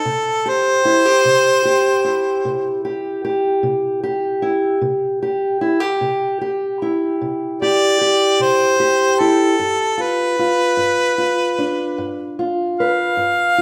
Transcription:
Already playing: harmonica A4, steel-string acoustic guitar C5
0.05 steel-string acoustic guitar C3
0.46 steel-string acoustic guitar G4, harmonica C5
0.85 steel-string acoustic guitar E4
1.05 steel-string acoustic guitar G4
1.25 steel-string acoustic guitar C3
1.65 steel-string acoustic guitar G4
2.05 steel-string acoustic guitar E4
2.45 steel-string acoustic guitar C3
2.85 steel-string acoustic guitar G4
3.25 steel-string acoustic guitar G4
3.63 steel-string acoustic guitar C3
4.04 steel-string acoustic guitar G4
4.42 steel-string acoustic guitar E4
4.81 steel-string acoustic guitar C3
5.22 steel-string acoustic guitar G4
5.61 steel-string acoustic guitar E4
5.80 steel-string acoustic guitar G4
6.01 steel-string acoustic guitar C3
6.41 steel-string acoustic guitar G4
6.82 steel-string acoustic guitar E4
7.21 steel-string acoustic guitar C3
7.62 steel-string acoustic guitar G4, harmonica D5
8.01 steel-string acoustic guitar G4
8.40 steel-string acoustic guitar C3, harmonica C5
8.80 steel-string acoustic guitar G4
9.20 steel-string acoustic guitar E4, harmonica A4
9.59 steel-string acoustic guitar G2
9.98 steel-string acoustic guitar F4
10.02 harmonica B4
10.39 steel-string acoustic guitar F4
10.77 steel-string acoustic guitar G2
11.18 steel-string acoustic guitar F4
11.58 steel-string acoustic guitar D4
11.98 steel-string acoustic guitar G2
12.39 steel-string acoustic guitar F4
12.80 steel-string acoustic guitar B4, harmonica F5
13.17 steel-string acoustic guitar G2
13.58 steel-string acoustic guitar F4

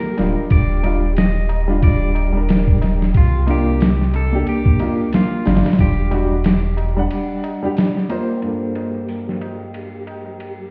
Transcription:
Already playing: upright piano A#3 F4 A4, synth texture G4, clean electric guitar A#4
0.17 sub bass D1, upright piano G3 D4 F4, snare, ride, tabla na
0.37 tabla na
0.50 sub bass D#1, clean electric guitar D5, kick, ride, tabla na
0.83 upright piano G3 D4 F4, ride, tabla na
1.03 tabla na
1.17 clean electric guitar D#5, snare, ride, tabla na
1.49 ride, tabla na
1.68 upright piano G3 D4 F4, tabla na
1.82 sub bass D#1, clean electric guitar D5, kick, ride, tabla na
2.15 ride, tabla na
2.33 upright piano G3 D4, tabla na
2.37 upright piano A#4
2.48 snare, ride, tabla na
2.67 kick
2.82 snare, ride, tabla na
3.01 snare, tabla na
3.14 sub bass C2, clean electric guitar F4, kick, ride, tabla na
3.47 upright piano A#3 D4 F4, clean electric guitar G4, ride, tabla na
3.66 tabla na
3.80 snare, open hi-hat, tabla na
4.01 snare
4.13 clean electric guitar A4, ride, tabla na
4.32 upright piano A#3 D4 G4, tabla na
4.46 clean electric guitar G4, ride, tabla na
4.66 kick
4.79 upright piano A#3 D4 F4, ride, tabla na
4.98 tabla na
5.13 clean electric guitar F4, snare, ride, tabla na
5.45 sub bass G1, upright piano G3 D4 F4, snare, open hi-hat, tabla na
5.55 snare, open hi-hat
5.64 snare, open hi-hat, tabla na
5.71 snare, open hi-hat
5.78 sub bass E1, clean electric guitar G4, kick, ride, tabla na
6.11 upright piano G3 D4 F#4, ride, tabla na
6.30 tabla na
6.44 snare, ride, tabla na
6.77 ride, tabla na
6.97 upright piano G3 D4 F#5, tabla na
7.11 ride, tabla na
7.44 ride, tabla na
7.63 upright piano G3 D4 G4, tabla na
7.76 snare, open hi-hat, tabla na
7.97 snare
8.09 upright piano A#3 F4 C5, ride, tabla na
8.28 tabla na
8.41 upright piano G2 A#3 F4, synth texture G4, ride, tabla na
8.46 upright piano A4
8.75 ride, tabla na
8.95 tabla na
9.08 open hi-hat, tabla na
9.29 snare
9.41 ride, tabla na
9.60 tabla na
9.74 ride, tabla na
10.07 ride, tabla na
10.26 tabla na
10.40 ride, tabla na

